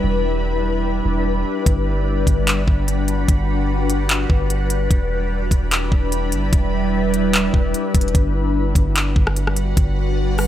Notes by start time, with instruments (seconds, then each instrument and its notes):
Already playing: ambient pad G3 D4 E4 B4
0.04 808-style bass E1
1.05 808-style bass E1
1.66 808-style bass G1, ambient pad F#4, kick, closed hi-hat
2.27 808-style bass G1, kick, closed hi-hat
2.47 clap, closed hi-hat
2.68 808-style bass G1, kick
2.88 closed hi-hat
3.08 closed hi-hat
3.28 808-style bass G1, kick, closed hi-hat
3.90 closed hi-hat
4.09 clap, closed hi-hat
4.30 808-style bass G1, kick
4.50 closed hi-hat
4.70 closed hi-hat
4.91 808-style bass E1, ambient pad G3 D4 E4 B4, kick, closed hi-hat
5.51 808-style bass E1, kick, closed hi-hat
5.71 clap, closed hi-hat
5.92 808-style bass E1, kick
6.12 closed hi-hat
6.32 808-style bass G1, closed hi-hat
6.53 808-style bass E1, kick, closed hi-hat
7.14 closed hi-hat
7.34 clap, closed hi-hat
7.54 808-style bass E1, kick
7.74 closed hi-hat
7.95 808-style bass E1, kick, closed hi-hat
8.01 closed hi-hat
8.08 closed hi-hat
8.14 808-style bass G1, ambient pad G3 D4 F#4 B4, kick, closed hi-hat
8.75 808-style bass G1, kick, closed hi-hat
8.96 clap, closed hi-hat
9.16 808-style bass G1, kick
9.27 cross-stick
9.36 closed hi-hat
9.47 cross-stick
9.56 closed hi-hat
9.77 808-style bass G1, kick, closed hi-hat
10.38 cross-stick, open hi-hat